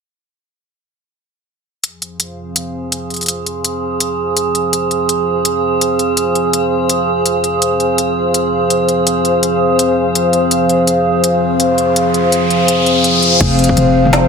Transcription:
1.83 F3 G#4, closed hi-hat
1.99 C5, closed hi-hat
2.10 F5
2.17 C4, closed hi-hat
2.56 closed hi-hat
2.92 closed hi-hat
3.10 closed hi-hat
3.14 closed hi-hat
3.16 closed hi-hat
3.21 closed hi-hat
3.23 closed hi-hat
3.26 closed hi-hat
3.28 closed hi-hat
3.46 closed hi-hat
3.65 closed hi-hat
4.00 closed hi-hat
4.37 closed hi-hat
4.55 closed hi-hat
4.73 closed hi-hat
4.91 closed hi-hat
5.09 closed hi-hat
5.45 closed hi-hat
5.81 closed hi-hat
5.99 closed hi-hat
6.17 closed hi-hat
6.35 closed hi-hat
6.53 closed hi-hat
6.89 closed hi-hat
7.26 closed hi-hat
7.44 closed hi-hat
7.62 closed hi-hat
7.80 closed hi-hat
7.98 closed hi-hat
8.34 closed hi-hat
8.70 closed hi-hat
8.89 closed hi-hat
9.07 closed hi-hat
9.25 closed hi-hat
9.43 closed hi-hat
9.79 closed hi-hat
10.15 closed hi-hat
10.33 closed hi-hat
10.51 closed hi-hat, riser
10.69 closed hi-hat
10.87 closed hi-hat
11.24 closed hi-hat
11.60 closed hi-hat
11.78 closed hi-hat
11.96 closed hi-hat
12.14 closed hi-hat
12.32 closed hi-hat
12.50 closed hi-hat
12.68 closed hi-hat
12.86 closed hi-hat
13.04 closed hi-hat
13.22 closed hi-hat
13.41 F1 F4, kick, closed hi-hat, crash
13.59 closed hi-hat
13.64 closed hi-hat
13.69 kick
13.77 closed hi-hat, mid tom
14.05 mid tom
14.11 snare, closed hi-hat, mid tom

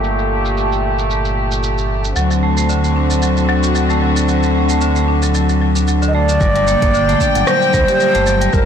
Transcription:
Already playing: G1 A#2 A3 G4
0.04 shaker
0.18 shaker
0.45 shaker
0.57 shaker
0.72 shaker
0.99 shaker
1.10 shaker
1.25 shaker
1.52 shaker
1.63 shaker
1.78 shaker
2.04 shaker
2.16 D2 D3 F#3 C4 F#4, shaker
2.31 F#3, shaker
2.43 A3
2.57 A3, shaker
2.69 D3, shaker
2.84 A3, shaker
2.96 D4
3.11 F#3, shaker
3.22 F#3, shaker
3.37 F#3, shaker
3.49 F#3
3.63 F#4, shaker
3.75 F#3, shaker
3.90 A3, shaker
4.02 F#3
4.17 F#3, shaker
4.28 F#3, shaker
4.43 F#3, shaker
4.55 A3
4.69 A3, shaker
4.81 D3, shaker
4.96 A3, shaker
5.08 D4
5.23 F#3, shaker
5.34 F#3, shaker
5.49 F#3, shaker
5.61 F#3
5.76 D4, shaker
5.88 F#3, shaker
6.02 D3, shaker
6.08 D#5
6.14 A3 D5
6.29 D3, shaker
6.41 G1 A#2 G3 G5, kick, shaker
6.56 G3, closed hi-hat, shaker
6.68 A#3, shaker
6.82 G1 A#3, kick, closed hi-hat, shaker
6.94 D3, shaker
7.09 A3, closed hi-hat, shaker
7.21 D4, kick, shaker
7.35 G1 F#3, closed hi-hat, shaker
7.41 D5
7.47 G3 C5, cross-stick, shaker
7.62 G3, shaker
7.74 D2 G3, kick, shaker
7.88 G4, closed hi-hat, shaker
8.00 G3, shaker
8.15 G1 A3, closed hi-hat, shaker
8.27 F#3, shaker
8.41 G3, closed hi-hat, shaker
8.53 G1 G3 A#4 A5, kick, shaker

